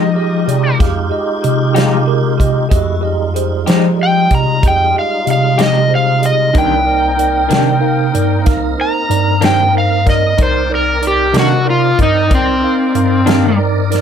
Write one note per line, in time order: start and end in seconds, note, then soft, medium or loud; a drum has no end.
0.00 0.44 F3 medium
0.00 2.67 G#3 medium
0.00 2.68 D#4 medium
0.00 2.68 F4 medium
0.00 2.67 G4 medium
0.00 0.77 D#5 medium
0.15 0.39 G4 medium
0.15 0.40 G#4 medium
0.15 0.40 D#5 medium
0.46 0.77 C3 medium
0.46 0.71 G4 medium
0.46 0.71 G#4 medium
0.46 0.72 D5 medium
0.46 closed hi-hat medium
0.79 1.10 F2 medium
0.79 1.03 G4 medium
0.79 1.04 G#4 medium
0.79 1.04 F5 medium
0.79 kick loud
0.79 snare soft
0.79 closed hi-hat medium
1.10 1.35 G4 medium
1.10 1.35 G#4 medium
1.10 1.36 D#5 medium
1.42 1.73 C3 medium
1.42 1.67 G4 medium
1.42 1.67 G#4 medium
1.42 1.68 D#5 medium
1.42 closed hi-hat medium
1.73 2.67 C3 medium
1.73 1.95 F3 medium
1.73 1.95 G#3 medium
1.73 1.94 D#4 medium
1.73 1.98 G4 medium
1.73 1.94 G4 medium
1.73 1.99 G#4 medium
1.73 1.99 F5 medium
1.73 closed hi-hat medium
1.78 snare medium
2.06 2.30 G4 medium
2.06 2.31 G#4 medium
2.06 2.31 A#4 medium
2.37 2.62 G4 medium
2.37 2.63 G#4 medium
2.37 2.63 D#5 medium
2.37 kick medium
2.37 closed hi-hat medium
2.69 3.63 F2 medium
2.69 3.03 G#3 medium
2.69 3.03 A3 medium
2.69 3.03 E4 medium
2.69 3.03 F#4 medium
2.69 2.94 G4 medium
2.69 2.94 G#4 medium
2.69 2.95 D#5 medium
2.69 kick loud
2.69 closed hi-hat medium
3.01 6.51 G3 medium
3.01 6.51 G#3 medium
3.01 6.51 D#4 medium
3.01 6.51 F4 medium
3.01 3.26 G4 medium
3.01 3.26 G#4 medium
3.01 3.27 D#5 medium
3.34 3.58 G4 medium
3.34 3.59 G#4 medium
3.34 3.59 C5 medium
3.34 closed hi-hat medium
3.66 4.27 F3 medium
3.66 3.87 F3 medium
3.66 3.87 G#3 medium
3.66 3.86 D#4 medium
3.66 3.90 G4 medium
3.66 3.86 G4 medium
3.66 3.91 G#4 medium
3.66 3.91 C5 medium
3.66 snare medium
3.66 closed hi-hat medium
3.98 4.22 G4 medium
3.98 4.22 G#4 soft
3.98 4.23 D#5 medium
4.03 4.32 G5 medium
4.29 4.60 C3 medium
4.29 4.54 G4 soft
4.29 4.54 G#4 soft
4.29 4.55 D#5 medium
4.29 kick medium
4.29 closed hi-hat medium
4.35 4.64 A#5 medium
4.62 4.93 F2 medium
4.62 4.86 G4 soft
4.62 4.86 G#4 soft
4.62 4.87 D#5 medium
4.62 kick loud
4.62 closed hi-hat medium
4.68 4.96 G5 medium
4.93 5.18 G4 medium
4.93 5.18 G#4 soft
4.93 5.18 D#5 medium
4.99 5.28 F5 medium
5.25 5.56 C3 medium
5.25 5.49 G4 medium
5.25 5.50 G#4 soft
5.25 5.50 D#5 medium
5.25 closed hi-hat soft
5.31 5.60 F5 medium
5.56 6.50 C3 medium
5.56 5.78 F3 soft
5.56 5.78 G#3 medium
5.56 5.78 D#4 medium
5.56 5.81 G4 medium
5.56 5.77 G4 medium
5.56 5.82 G#4 medium
5.56 5.82 D#5 medium
5.56 closed hi-hat medium
5.61 5.91 D#5 medium
5.61 snare loud
5.89 6.13 G4 medium
5.89 6.14 G#4 soft
5.89 6.14 C5 medium
5.95 6.24 F5 medium
6.21 6.45 G4 medium
6.21 6.46 G#4 soft
6.21 6.46 D#5 medium
6.21 closed hi-hat medium
6.26 6.55 D#5 medium
6.53 7.46 C2 medium
6.53 6.73 C3 medium
6.53 6.73 D#3 medium
6.53 6.73 A#3 medium
6.53 6.85 C#4 medium
6.53 6.74 D4 medium
6.53 6.85 D#4 medium
6.53 6.78 D#4 medium
6.53 6.85 E4 medium
6.53 6.78 A#4 medium
6.53 6.86 B4 medium
6.53 6.79 D5 medium
6.53 kick loud
6.53 closed hi-hat medium
6.58 8.44 G5 medium
6.84 10.35 A#3 medium
6.84 10.35 C4 medium
6.84 7.09 D#4 medium
6.84 10.35 D#4 medium
6.84 7.10 A#4 soft
6.84 10.35 A#4 medium
6.84 7.10 D5 medium
7.17 7.41 D#4 soft
7.17 7.42 A#4 soft
7.17 7.42 D5 medium
7.17 closed hi-hat medium
7.48 8.10 C3 medium
7.48 7.69 C3 medium
7.48 7.69 D#3 medium
7.48 7.69 A#3 medium
7.48 7.68 D4 medium
7.48 7.73 D#4 medium
7.48 7.73 A#4 medium
7.48 7.74 D5 medium
7.48 closed hi-hat medium
7.53 snare loud
7.80 8.05 D#4 medium
7.80 8.05 A#4 medium
7.80 8.06 F5 medium
8.13 8.44 G2 medium
8.13 8.38 D#4 medium
8.13 8.38 A#4 medium
8.13 8.38 D5 medium
8.13 closed hi-hat medium
8.45 8.76 C2 medium
8.45 8.69 D#4 medium
8.45 8.70 A#4 medium
8.45 8.70 F5 medium
8.45 kick loud
8.45 snare soft
8.45 closed hi-hat medium
8.78 9.02 D#4 soft
8.78 9.02 A#4 soft
8.78 9.02 C5 medium
8.78 9.42 A#5 loud
9.09 9.39 G2 medium
9.09 9.33 D#4 medium
9.09 9.34 A#4 soft
9.09 9.34 D5 medium
9.09 closed hi-hat medium
9.40 10.34 G2 medium
9.40 9.61 C3 soft
9.40 9.61 D#3 medium
9.40 9.61 A#3 medium
9.40 9.61 D4 medium
9.40 9.65 D#4 medium
9.40 9.65 A#4 soft
9.40 9.66 C5 medium
9.40 snare medium
9.40 closed hi-hat medium
9.45 9.75 G5 medium
9.73 9.98 D#4 soft
9.73 9.98 A#4 soft
9.73 9.98 C5 medium
9.78 10.07 F5 medium
10.05 10.29 D#4 medium
10.05 10.30 A#4 soft
10.05 10.30 D5 medium
10.05 kick medium
10.05 snare soft
10.05 closed hi-hat medium
10.10 10.39 D#5 medium
10.37 11.31 C2 medium
10.37 14.01 C4 medium
10.37 14.01 D#4 medium
10.37 10.62 D#4 medium
10.37 14.01 A#4 medium
10.37 10.62 A#4 medium
10.37 14.01 D5 medium
10.37 10.62 D5 medium
10.37 kick loud
10.37 closed hi-hat medium
10.43 10.71 C5 medium
10.70 10.94 D#4 medium
10.70 10.94 A#4 soft
10.70 10.95 D5 medium
10.75 11.04 A#4 medium
11.02 11.26 D#4 soft
11.02 11.26 A#4 soft
11.02 11.26 D5 medium
11.02 closed hi-hat medium
11.07 11.36 G4 medium
11.32 11.94 C3 medium
11.32 11.54 C3 medium
11.32 11.54 D#3 medium
11.32 11.53 A#3 medium
11.32 11.53 D4 medium
11.32 11.57 D#4 medium
11.32 11.58 A#4 soft
11.32 11.58 D#5 medium
11.32 closed hi-hat medium
11.37 11.68 F#4 medium
11.37 snare medium
11.65 11.90 D#4 medium
11.65 11.90 A#4 soft
11.65 11.90 D5 medium
11.70 11.99 F4 medium
11.97 12.28 G2 medium
11.97 12.22 D#4 medium
11.97 12.22 A#4 soft
11.97 12.23 D#5 medium
11.97 kick medium
11.97 closed hi-hat medium
12.03 12.32 D#4 medium
12.29 12.60 C2 medium
12.29 12.54 D#4 soft
12.29 12.54 A#4 soft
12.29 12.55 D5 medium
12.29 kick loud
12.29 closed hi-hat medium
12.34 13.57 C4 loud
12.62 12.86 D#4 soft
12.62 12.87 A#4 soft
12.62 12.87 F5 medium
12.93 13.24 G2 medium
12.93 13.18 D#4 soft
12.93 13.19 A#4 soft
12.93 13.19 F5 medium
12.93 closed hi-hat medium
13.25 13.46 C3 medium
13.25 13.46 D#3 medium
13.25 13.46 A#3 medium
13.25 13.46 D4 medium
13.25 13.50 D#4 medium
13.25 13.51 A#4 medium
13.25 13.51 F5 medium
13.25 closed hi-hat medium
13.29 snare medium
13.58 13.82 D#4 medium
13.58 13.83 A#4 medium
13.58 13.83 D5 medium
13.90 14.01 D#4 medium
13.90 14.01 A#4 medium
13.90 14.01 D5 medium
13.90 closed hi-hat medium
13.94 snare soft